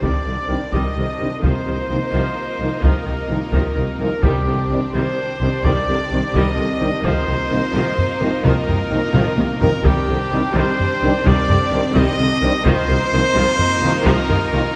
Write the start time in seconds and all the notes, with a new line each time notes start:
Already playing: C4 D4 G4 C5, impact
0.02 C2 C3 D#3 G3 D5, taiko
0.25 C2 C3 D3 D#3
0.48 C2 C3 D#3 G3 C4 D4
0.72 C2 C3 D#3 G3 D#5, taiko
0.96 C2 C3 D3 D#3
1.19 C2 C3 D#3 G3 C4 D4
1.42 C2 C3 D#3 F3 A#3 D#4 F4 A#4 C5 D#5, taiko
1.66 C2 C3 D#3
1.90 C2 C3 D#3 F3 A#3 D#4
2.13 C2 C3 D#3 F3
2.59 C2 C3 D#3 F3 A#3 D#4
2.82 C2 C3 D#3 F3 A#4, taiko
3.05 C2 C3 D#3
3.28 C2 C3 D#3 F3 A#3 D#4
3.52 C2 C3 D#3 F3, taiko
3.75 C2 C3 D#3
3.99 C2 C3 D#3 F3 A#3 D#4 A#4
4.22 C2 C3 D#3 G3 C4 D4 G4 C5, taiko
4.46 C2 C3 D3 D#3
4.70 C2 C3 D#3 G3 C4 D4
4.94 C2 C3 D#3 G3 C5
5.40 C2 C3 D#3 G3 C4 D4
5.64 C2 C3 D#3 G3 D5, taiko
5.87 C2 C3 D3 D#3
6.11 C2 C3 D#3 G3 C4 D4
6.33 C2 C3 D#3 G3 D#5, taiko
6.57 C2 C3 D3 D#3
6.80 C2 C3 D#3 G3 C4 D4
7.04 C2 C3 D#3 F3 A#3 D#4 F4 A#4 C5 D#5, taiko
7.27 C2 C3 D#3
7.51 C2 C3 D#3 F3 A#3 D#4
7.74 C2 C3 D#3 F3
7.98 taiko low
8.20 C2 C3 D#3 F3 A#3 D#4
8.44 C2 C3 D#3 F3 A#4, taiko
8.67 C2 C3 D#3, taiko low
8.90 C2 C3 D#3 F3 A#3 D#4
9.14 C2 C3 D#3 F3, taiko low-mid
9.37 C2 C3 D#3, taiko high
9.60 C2 C3 D#3 F3 A#3 D#4 A#4, taiko low
9.83 C2 C3 D#3 G3 C4 D4 G4 C5, taiko
10.08 C2 C3 D3 D#3
10.31 C2 C3 D#3 G3 C4 D4
10.55 C2 C3 D#3 G3 C5
10.79 taiko low
11.02 C2 C3 D#3 G3 C4 D4
11.25 C2 C3 D#3 G3 D5, taiko
11.48 C2 C3 D3 D#3, taiko low
11.72 C2 C3 D#3 G3 C4 D4
11.95 C2 C3 D#3 G3 D#5, taiko
12.19 C2 C3 D3 D#3
12.41 C2 C3 D#3 G3 C4 D4
12.66 C2 C3 D#3 F3 A#3 D#4 F4 A#4 C5 D#5, taiko
12.88 C2 C3 D#3
13.11 C2 C3 D#3 F3 A#3 D#4
13.35 C2 C3 D#3 F3
13.59 taiko low
13.82 C2 C3 D#3 F3 A#3 D#4
14.05 C2 C3 D#3 F3 A#4, taiko
14.29 C2 C3 D#3, taiko low
14.52 C2 C3 D#3 F3 A#3 D#4